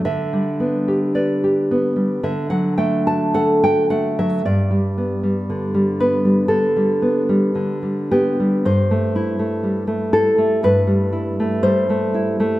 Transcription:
\new Staff \with { instrumentName = "Nylon-string guitar" } { \time 4/4 \key g \major \tempo 4 = 58 << { e''4 d''4 e''16 fis''16 g''16 a''16 fis''16 g''16 fis''16 e''16 | d''4. b'8 a'4. g'8 | c''4. a'8 b'4 c''4 | } \\ { d16 g16 b16 g'16 b'16 g'16 b16 g16 d16 fis16 a16 fis'16 a'16 fis'16 a16 fis16 | g,16 g16 b16 g16 d16 g16 b16 g16 d16 g16 b16 g16 d16 g16 b16 g16 | g,16 a16 e'16 a16 g16 a16 e'16 a16 g,16 g16 e'16 a16 g16 a16 e'16 a16 | } >> }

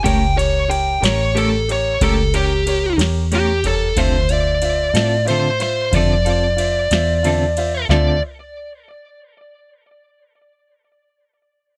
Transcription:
<<
  \new Staff \with { instrumentName = "Lead electric guitar" } { \time 12/8 \key d \minor \tempo 4. = 61 g''8 cis''8 g''8 cis''8 a'8 cis''8 a'8 g'4 r8 g'8 a'8 | c''8 d''4. c''8 c''8 d''2. | d''8 r1 r4. | }
  \new Staff \with { instrumentName = "Upright piano" } { \time 12/8 \key d \minor <g' bes' cis''>8 <g' bes' cis''>8 <g' bes' cis''>8 <g' bes' cis''>8 <g' bes' cis''>8 <g' bes' cis''>8 <g' bes' cis''>8 <g' bes' cis''>8 <g' bes' cis''>8 <g' bes' cis''>8 <g' bes' cis''>8 <g' bes' cis''>8 | <f' c'' e''>8 <f' c'' e''>8 <f' c'' e''>8 <f' c'' e''>8 <f' c'' e''>8 <f' c'' e''>8 <f' c'' e''>8 <f' c'' f''>8 <f' c'' e''>8 <f' c'' e''>8 <f' c'' e'' a''>8 <f' c'' e'' f''>8 | <f' c'' e''>8 r1 r4. | }
  \new Staff \with { instrumentName = "Clean electric guitar" } { \time 12/8 \key d \minor <a cis' g' bes'>8 r4 <cis' g' bes'>8 <a cis' g' bes'>8 r8 <a cis' g' bes'>8 <cis' g' bes'>8 r4 <a cis' g' bes'>8 r8 | <d c' f' a'>8 r4 <c' f' a'>8 <d c' f' a'>8 r8 <d c' f' a'>8 <c' f' a'>8 r4 <d c' f' a'>8 r8 | <d c' f' a'>8 r1 r4. | }
  \new Staff \with { instrumentName = "Fingered electric bass" } { \clef bass \time 12/8 \key d \minor cis,4. a,,4. cis,4. e,4. | d,4. a,4. f,4. e,4. | d,8 r1 r4. | }
  \new DrumStaff \with { instrumentName = "Drums" } \drummode { \time 12/8 <bd cymr>8 cymr8 cymr8 <cymr sn>8 cymr8 cymr8 <bd cymr>8 cymr8 cymr8 <cymr sn>8 cymr8 <bd cymr sn>8 | <bd cymr>8 cymr8 cymr8 <cymr sn>8 cymr8 <cymr sn>8 <bd cymr>8 cymr8 cymr8 <cymr sn>8 cymr8 cymr8 | <sn tomfh>4. r4. r4. r4. | }
>>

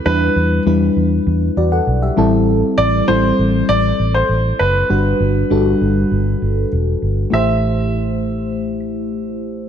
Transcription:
<<
  \new Staff \with { instrumentName = "Grand piano" } { \time 4/4 \key a \dorian \tempo 4 = 99 b'4 r2. | r8 d''8 c''4 d''8. c''8. b'8~ | b'2. r4 | e''1 | }
  \new Staff \with { instrumentName = "FM electric piano" } { \time 4/4 \key a \dorian << { r2 r8 <fis' d''>16 <a' fis''>8 <g' e''>8 r16 | r1 | r1 | r1 | } \\ { <g d' e' b'>4 <g d' e' b'>4. r4 <g c' e' a'>8~ | <g c' e' a'>8. r16 <g c' e' a'>4. r4. | <g d' fis' b'>4 <g d' fis' a'>4. r4. | <a e' g' c''>1 | } >> }
  \new Staff \with { instrumentName = "Fingered electric bass" } { \clef bass \time 4/4 \key a \dorian e,8 e,8 e,8 e,8 e,8 e,8 b,,8 a,,8~ | a,,8 a,,8 a,,8 a,,8 a,,8 a,,8 a,,8 fis,,8 | g,,8 g,,8 g,,8 g,,8 g,,8 g,,8 e,,8 g,,8 | a,,1 | }
>>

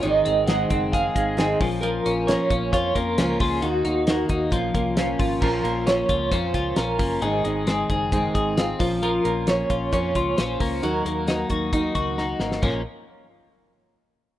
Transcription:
<<
  \new Staff \with { instrumentName = "Clean electric guitar" } { \time 4/4 \key bes \minor \tempo 4 = 133 ees''4 ges''4 f''4 aes'4 | bes'4 des''4 des''8 bes'8 bes'8 aes'8 | ges'2 f'4 f'4 | bes'4 des''4 c''4 bes'4 |
aes'4 aes'8 aes'4. f'4 | bes'4 des''4 des''4 c''4 | bes'2. r4 | r1 | }
  \new Staff \with { instrumentName = "Clean electric guitar" } { \time 4/4 \key bes \minor ees8 c'8 aes8 c'8 aes'8 aes8 c'8 f8 | f8 des'8 bes8 des'8 f'8 bes8 des'8 f'8 | ees8 ees'8 bes8 ees'8 f8 bes8 des'8 f'8 | <f f'>8 bes8 des'8 f'8 des'8 f'8 des'8 bes8 |
<ees aes'>8 aes8 c'8 aes'8 c'8 aes'8 c'8 f8 | <f f'>8 bes8 des'8 f'8 des'8 f'8 des'8 bes8 | <ges ges'>8 bes8 ees'8 ges'8 ees'8 ges'8 ees'8 bes8 | <f bes des'>8 r2. r8 | }
  \new Staff \with { instrumentName = "Steel-string acoustic guitar" } { \time 4/4 \key bes \minor <aes, ees aes c' ees' aes'>8 <aes c' ees' aes'>8 <aes, ees aes c' ees' aes'>8 <aes c' ees' aes'>8 <aes c' ees' aes'>8 <aes c' ees' aes'>8 <aes, ees aes c' ees' aes'>8 <bes, f bes des' f'>8~ | <bes, f bes des' f'>8 <bes des' f'>8 <bes, f bes des' f'>8 <bes des' f'>8 <f bes des' f'>8 <bes des' f'>8 <bes, f bes des' f'>4 | <ees bes ees' ges'>8 <bes ees' ges'>8 <ees bes ees' ges'>8 <bes ees' ges'>8 <f bes des' f'>8 <bes des' f'>8 <bes, f bes des' f'>4 | <bes, f bes des' f'>8 <bes des' f'>8 <f bes des' f'>4 <bes, f bes des' f'>4 <f bes des' f'>8 <bes des' f'>8 |
<aes, ees aes c' ees' aes'>8 <aes c' ees' aes'>8 <aes c' ees' aes'>8 <aes c' ees' aes'>8 <aes, ees aes c' ees' aes'>4 <aes c' ees' aes'>8 <bes, f des' f' bes'>8~ | <bes, f des' f' bes'>8 <des' f' bes'>8 <f des' f' bes'>4 <bes, f des' f' bes'>4 <f des' f' bes'>8 <des' f' bes'>8 | <ees ees' ges' bes'>8 <ees' ges' bes'>8 <ees ees' ges' bes'>8 <ees' ges' bes'>8 <ees ees' ges' bes'>4 <ees ees' ges' bes'>8 <ees' ges' bes'>8 | <bes, bes des' f' bes'>8 r2. r8 | }
  \new Staff \with { instrumentName = "Fingered electric bass" } { \clef bass \time 4/4 \key bes \minor aes,,8 aes,,4 ges,,4 aes,,4 bes,,8~ | bes,,8 bes,,8. r16 bes,,8 f,8 f,8 des,8 des,8 | ees,8 ees,4 ees,8 bes,,8 c,4 aes,,8 | bes,,8 bes,,4 des,8 f,8 des,8 bes,,8 ges,,8 |
aes,,8 aes,,4 ges,,4 aes,,4 bes,,8~ | bes,,8 bes,,4 bes,,8 f,8 des,8 bes,,8 des,8 | ees,8 ees,4 ees,4 des,4 aes,,8 | bes,,8 r2. r8 | }
  \new DrumStaff \with { instrumentName = "Drums" } \drummode { \time 4/4 hh8 hh8 <hh sn>8 <hh bd>8 <hh bd>8 <hh bd>8 <hh sn>8 <hho bd>8 | hh8 hh8 <hh sn>8 <hh bd>8 <hh bd sn>8 <hh bd>8 <hh sn>8 <hho bd>8 | hh8 hh8 <hh sn>8 <hh bd>8 <hh bd>8 <hh bd>8 <hh sn>8 <hho bd>8 | <cymc bd>8 hh8 <hh sn>8 <hh bd>8 <hh bd sn>8 <hh bd>8 <hh sn>8 <hho bd>8 |
hh8 hh8 <hh sn>8 <hh bd>8 <hh bd>8 <hh bd>8 <hh sn>8 <hho bd>8 | hh8 hh8 <hh sn>8 <hh bd>8 <hh bd>8 <hh bd>8 <hh sn>8 <hho bd>8 | hh8 hh8 <hh sn>8 <hh bd>8 <hh bd>8 <hh bd>8 sn8 sn16 sn16 | <cymc bd tomfh>4 r4 r4 r4 | }
>>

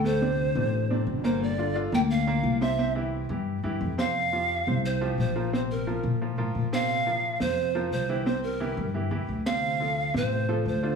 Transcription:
<<
  \new Staff \with { instrumentName = "Pan flute" } { \time 4/4 \key f \major \tempo 4 = 175 c''2. r8 c''8 | d''4 r8 g''8 f''4. e''8~ | e''8 r2. f''8~ | f''2 c''4 c''4 |
c''8 bes'4. r4. f''8~ | f''4. c''4. c''4 | c''8 bes'4. r4. f''8~ | f''4. c''4. c''4 | }
  \new Staff \with { instrumentName = "Grand piano" } { \time 4/4 \key f \major <a, a a'>8 <c c' d'>4 <c c' d'>4 <c c' d'>4 <bes, bes bes'>8~ | <bes, bes bes'>8 <d d' f'>8 <d d' f'>8 <bes, bes bes'>4 <bes, bes bes'>4 <c c' c''>8 | <c c' c''>8 <e e' g'>4 <e e' g'>4 <e e' g'>4 <c c' c''>8 | r8 <f f' g'>4 <c c' c''>4 <f f' g'>4 <f f' bes'>8 |
<c c' c''>4 <f f' bes'>4 <f f' bes'>8 <f f' bes'>4 <c c' c''>8~ | <c c' c''>8 <f f' bes'>4 <c c' c''>4 <f f' bes'>4 <e e' g'>8 | <c c' c''>4 <e e' g'>4 <e e' g'>8 <e e' g'>4 <c c' c''>8~ | <c c' c''>8 <f f' a'>4 <c c' c''>4 <f f' a'>4 <d d' f'>8 | }
  \new Staff \with { instrumentName = "Upright bass" } { \clef bass \time 4/4 \key f \major d,4. a,,4. g,,4~ | g,,4. d,4. c,4~ | c,4. g,4 g,8 f,4~ | f,4. c,4. bes,,4~ |
bes,,4. bes,4 a,8 bes,4~ | bes,4. f,4. c,4~ | c,4. g,4 e,8 d,4~ | d,4. a,,4. d,4 | }
>>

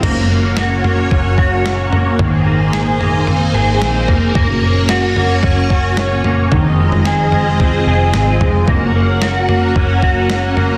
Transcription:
<<
  \new Staff \with { instrumentName = "String machine" } { \time 4/4 \key ges \lydian \tempo 4 = 111 << { <des' ges' des''>1 | <ees' aes' c''>1 | <des' ges' des''>1 | <f' aes' ees''>1 |
<ges' bes' ges''>1 | } \\ { bes1~ | bes1~ | bes1 | c'1 |
des'1 | } >> }
  \new Staff \with { instrumentName = "Clean electric guitar" } { \time 4/4 \key ges \lydian bes8 bes8 ges'8 bes8 des'8 ges'8 des'8 bes8 | ees8 bes8 aes'8 bes8 c'8 aes'8 c'8 bes8 | bes8 bes8 ges'8 bes8 des'8 ges'8 des'8 bes8 | ees8 aes8 aes'8 aes8 c'8 aes'8 c'8 aes8 |
bes8 bes8 ges'8 bes8 des'8 ges'8 des'8 bes8 | }
  \new Staff \with { instrumentName = "Picked electric bass" } { \clef bass \time 4/4 \key ges \lydian ges,,2 ges,,2 | aes,,2~ aes,,8 aes,,8 bes,,8 f,,8 | ges,,2 ges,,2 | f,,2~ f,,8 f,,8 aes,,8 f,,8 |
ges,,2 ges,,2 | }
  \new DrumStaff \with { instrumentName = "Drums" } \drummode { \time 4/4 <cymc bd tomfh>4 sn8 tomfh8 <bd tomfh>8 bd8 sn8 tomfh8 | <bd tomfh>4 sn8 tomfh8 tomfh4 sn8 <bd tomfh>8 | <bd tomfh>4 sn8 tomfh8 <bd tomfh>8 bd8 sn8 tomfh8 | <bd tomfh>8. tomfh16 sn8 tomfh8 <bd tomfh>4 sn8 <bd tomfh>8 |
<bd tomfh>4 sn8 tomfh8 <bd tomfh>8 bd8 sn8 tomfh8 | }
>>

